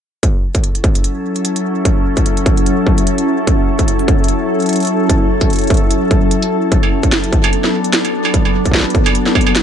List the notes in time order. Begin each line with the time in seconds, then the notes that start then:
0.23 F#3 C#4 E4 A4, kick, closed hi-hat
0.55 kick, closed hi-hat
0.64 closed hi-hat
0.75 closed hi-hat
0.84 kick, closed hi-hat
0.95 closed hi-hat
1.04 closed hi-hat
1.36 closed hi-hat
1.45 closed hi-hat
1.56 closed hi-hat
1.85 kick, closed hi-hat
2.17 kick, closed hi-hat
2.26 closed hi-hat
2.37 closed hi-hat
2.46 kick, closed hi-hat
2.57 closed hi-hat
2.66 closed hi-hat
2.87 kick
2.98 closed hi-hat
3.07 closed hi-hat
3.18 closed hi-hat
3.47 kick, closed hi-hat
3.79 kick, closed hi-hat
3.88 closed hi-hat
3.99 closed hi-hat
4.08 kick, closed hi-hat
4.24 closed hi-hat
4.28 closed hi-hat
4.60 closed hi-hat
4.62 closed hi-hat
4.66 closed hi-hat
4.69 closed hi-hat
4.73 closed hi-hat
4.76 closed hi-hat
4.80 closed hi-hat
4.83 closed hi-hat
4.85 closed hi-hat
4.87 closed hi-hat
5.09 kick, closed hi-hat
5.41 kick, closed hi-hat
5.50 closed hi-hat
5.53 closed hi-hat
5.56 closed hi-hat
5.59 closed hi-hat
5.61 closed hi-hat
5.64 closed hi-hat
5.67 closed hi-hat
5.70 kick, closed hi-hat
5.74 closed hi-hat
5.77 closed hi-hat
5.91 closed hi-hat
6.11 kick, closed hi-hat
6.31 closed hi-hat
6.42 closed hi-hat
6.72 B3 D4, kick, closed hi-hat
6.83 struck metal
7.03 kick, closed hi-hat
7.12 snare, closed hi-hat
7.24 closed hi-hat
7.32 kick, closed hi-hat
7.44 closed hi-hat, struck metal
7.53 closed hi-hat
7.64 snare
7.84 closed hi-hat
7.93 snare, closed hi-hat
8.05 closed hi-hat, struck metal
8.25 struck metal
8.34 kick, closed hi-hat
8.45 struck metal
8.65 kick, closed hi-hat
8.71 kick, snare
8.77 kick, snare
8.80 snare
8.83 snare
8.90 closed hi-hat
8.95 kick, closed hi-hat
9.06 closed hi-hat, struck metal
9.15 closed hi-hat
9.26 snare
9.35 kick, struck metal
9.41 closed hi-hat
9.47 struck metal
9.55 snare, closed hi-hat